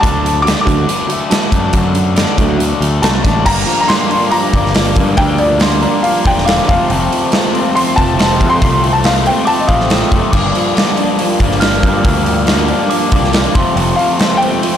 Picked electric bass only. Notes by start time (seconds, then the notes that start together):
0.03 D2
0.67 D2
1.52 F#2
1.73 F#2
2.38 D2
2.81 D2
3.02 C2
3.25 A1
3.46 G1
4.53 G1
4.96 G2
5.18 D2
6.25 E1
6.69 F1
6.90 F1
7.98 F1
8.41 F2
8.62 C2
9.69 A1
10.12 F#1
10.33 G1
11.40 G1
11.83 G2
12.05 D2
13.12 C2
13.55 F1
13.76 F1